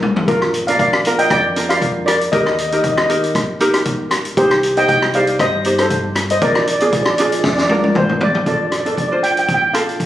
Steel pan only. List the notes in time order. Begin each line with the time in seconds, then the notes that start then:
0.28 F4 A#4
0.67 D5 F5
0.79 D5 F5
1.19 D#5 G5
1.31 D5 G5
1.69 D5 F5
2.06 A#4 D5
2.32 A#4 D#5
2.40 D#5
2.49 D#5
2.55 D#5
2.63 D#5
2.70 D#5
2.77 D#5
2.82 D#5
2.92 D#5
2.99 D#5
3.06 D#5
3.13 D#5
4.37 G4 C5
4.77 D#5 G5
4.88 D#5 G5
5.15 D5 F5
5.41 C5 D#5
5.80 A4 C5
6.31 C5 D#5
6.42 A#4 D5
6.50 D5
6.59 D5
6.66 D5
6.72 D5
6.80 D5
6.86 D5
6.94 D5
7.03 D5
7.11 D5
7.19 D5
7.26 D5
7.33 D5
7.41 D5
7.49 D5
7.57 D5
7.63 D5
7.71 D5
7.79 D5
7.98 C5
8.23 D5
8.49 D5
8.57 D5
8.65 D5
8.73 D5
8.80 D5
8.87 D5
8.94 D5
9.02 D5
9.08 D5
9.23 G5
9.31 G5
9.39 G5
9.46 G5
9.54 G5
9.62 G5
9.73 F5